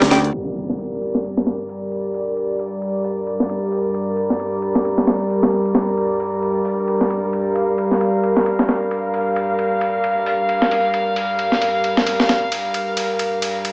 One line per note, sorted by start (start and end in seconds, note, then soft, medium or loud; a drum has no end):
0.00 0.29 D2 loud
0.00 0.30 G3 medium
0.00 0.29 G4 medium
0.00 0.29 A#4 medium
0.00 0.30 D5 medium
0.00 snare loud
0.00 closed hi-hat soft
0.00 ride medium
0.11 0.17 G4 loud
0.11 snare loud
0.11 closed hi-hat medium
0.11 ride medium
0.24 closed hi-hat soft
0.34 13.72 G2 medium
0.34 13.72 G3 medium
0.34 13.72 A#4 medium
0.34 7.54 D5 medium
0.34 ride medium
0.34 impact medium
0.56 ride medium
0.69 snare soft
0.79 ride medium
1.02 ride medium
1.15 snare soft
1.24 ride medium
1.37 snare soft
1.46 snare soft
1.46 ride medium
1.69 ride medium
1.92 ride medium
2.14 ride medium
2.37 ride medium
2.59 ride medium
2.82 ride medium
3.04 open hi-hat medium
3.27 ride medium
3.40 snare soft
3.49 ride medium
3.72 ride medium
3.94 ride medium
4.17 ride medium
4.30 snare soft
4.40 ride medium
4.62 ride medium
4.75 snare soft
4.85 ride medium
4.98 snare soft
5.07 snare medium
5.07 ride medium
5.30 ride medium
5.43 snare medium
5.43 ride medium
5.65 ride medium
5.75 snare medium
5.75 ride medium
5.97 ride medium
6.20 ride medium
6.42 ride medium
6.65 open hi-hat medium
6.88 ride medium
7.01 snare soft
7.10 ride medium
7.33 ride medium
7.55 13.72 F5 medium
7.55 ride medium
7.78 ride medium
7.91 snare soft
8.01 ride medium
8.23 ride medium
8.37 snare soft
8.46 ride medium
8.59 snare soft
8.69 snare soft
8.69 ride medium
8.91 ride medium
9.14 ride medium
9.36 ride medium
9.59 ride medium
9.81 ride medium
10.04 ride medium
10.26 open hi-hat medium
10.49 ride medium
10.62 snare soft
10.71 ride medium
10.94 ride medium
11.16 ride medium
11.39 ride medium
11.52 snare soft
11.62 ride medium
11.84 ride medium
11.97 snare soft
12.06 ride medium
12.20 snare soft
12.29 snare soft
12.29 ride medium
12.52 ride medium
12.74 ride medium
12.97 ride medium
13.19 ride medium
13.42 ride medium
13.65 ride medium